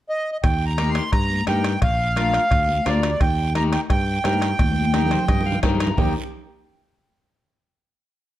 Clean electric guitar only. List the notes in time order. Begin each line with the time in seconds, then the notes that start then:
0.78 D#4 G4 A#4
1.47 D#4 G4 A#4
2.17 D4 F4 A#4
2.86 D4 F4 A#4
3.55 D#4 G4 A#4
4.24 D#4 G4 A#4
4.94 D#4 G4 A#4
5.11 C5
5.29 D#5
5.46 F5
5.63 D#4 G4 A#4 G5
5.81 A#5
5.98 D#4 G4 A#4